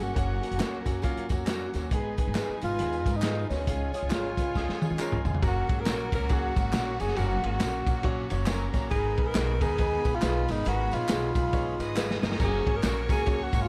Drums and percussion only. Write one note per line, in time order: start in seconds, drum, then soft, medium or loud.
0.16 kick medium
0.16 closed hi-hat medium
0.16 tambourine soft
0.43 closed hi-hat medium
0.52 closed hi-hat medium
0.60 snare loud
0.60 clap medium
0.60 closed hi-hat medium
0.60 tambourine medium
0.86 kick medium
0.86 closed hi-hat medium
0.86 tambourine medium
1.02 kick medium
1.02 closed hi-hat medium
1.02 tambourine soft
1.17 closed hi-hat soft
1.29 kick medium
1.29 closed hi-hat medium
1.29 tambourine medium
1.47 snare loud
1.47 clap medium
1.47 closed hi-hat loud
1.47 tambourine medium
1.74 snare soft
1.74 closed hi-hat medium
1.74 tambourine soft
1.91 kick loud
1.91 closed hi-hat medium
1.91 tambourine soft
2.17 kick medium
2.17 closed hi-hat medium
2.17 tambourine soft
2.35 snare loud
2.35 clap medium
2.35 closed hi-hat medium
2.35 tambourine medium
2.62 closed hi-hat medium
2.62 tambourine medium
2.79 closed hi-hat medium
2.79 tambourine soft
2.93 closed hi-hat soft
3.06 kick medium
3.06 closed hi-hat medium
3.06 tambourine medium
3.22 snare loud
3.22 clap loud
3.22 closed hi-hat loud
3.22 tambourine medium
3.50 snare soft
3.50 open hi-hat soft
3.50 tambourine soft
3.67 kick loud
3.67 closed hi-hat medium
3.67 tambourine soft
3.94 closed hi-hat medium
3.94 tambourine soft
4.10 snare loud
4.10 clap medium
4.10 closed hi-hat medium
4.10 tambourine loud
4.37 kick medium
4.37 closed hi-hat medium
4.37 tambourine medium
4.55 kick medium
4.55 snare medium
4.55 tambourine soft
4.69 snare soft
4.82 high tom medium
4.82 tambourine medium
4.90 high tom medium
4.99 clap medium
4.99 tambourine medium
5.12 mid tom medium
5.25 floor tom medium
5.25 tambourine soft
5.35 floor tom medium
5.42 kick loud
5.42 ride medium
5.42 tambourine soft
5.69 kick medium
5.69 ride medium
5.69 tambourine soft
5.86 snare loud
5.86 clap loud
5.86 ride medium
5.86 tambourine loud
6.12 kick loud
6.12 ride medium
6.12 tambourine medium
6.29 kick loud
6.29 ride medium
6.29 tambourine soft
6.56 kick loud
6.56 ride medium
6.56 tambourine medium
6.73 snare loud
6.73 clap loud
6.73 ride medium
6.73 tambourine loud
7.00 ride medium
7.00 tambourine medium
7.08 snare soft
7.16 ride medium
7.16 tambourine medium
7.43 ride medium
7.60 snare loud
7.60 clap loud
7.60 ride medium
7.60 tambourine loud
7.87 kick loud
7.87 ride medium
7.87 tambourine medium
8.03 kick loud
8.03 ride medium
8.30 ride medium
8.30 tambourine medium
8.46 snare loud
8.46 clap loud
8.46 ride medium
8.46 tambourine loud
8.73 kick medium
8.73 snare soft
8.73 ride medium
8.73 tambourine medium
8.91 kick loud
8.91 ride medium
8.91 tambourine soft
9.17 kick medium
9.17 ride medium
9.35 snare loud
9.35 clap loud
9.35 ride medium
9.35 tambourine loud
9.61 kick loud
9.61 ride medium
9.61 tambourine medium
9.78 kick loud
9.78 ride medium
9.78 tambourine soft
10.05 kick medium
10.05 ride medium
10.05 tambourine medium
10.22 snare loud
10.22 clap loud
10.22 ride medium
10.22 tambourine loud
10.48 snare soft
10.48 open hi-hat medium
10.48 ride medium
10.48 tambourine medium
10.65 hi-hat pedal medium
10.65 ride medium
10.65 tambourine medium
10.91 ride medium
10.91 tambourine soft
11.09 snare loud
11.09 clap loud
11.09 ride medium
11.09 tambourine loud
11.35 kick loud
11.35 ride medium
11.35 tambourine medium
11.53 kick loud
11.53 ride medium
11.53 tambourine soft
11.80 ride medium
11.80 tambourine medium
11.96 snare medium
11.96 clap loud
11.96 tambourine loud
12.11 snare medium
12.23 snare loud
12.23 tambourine medium
12.32 snare medium
12.40 kick loud
12.40 tambourine medium
12.40 crash medium
12.67 kick medium
12.67 ride medium
12.83 snare loud
12.83 clap loud
12.83 ride medium
12.83 tambourine loud
13.09 kick loud
13.09 ride medium
13.09 tambourine medium
13.26 kick loud
13.26 ride medium
13.26 tambourine soft
13.53 kick loud
13.53 ride medium
13.53 tambourine medium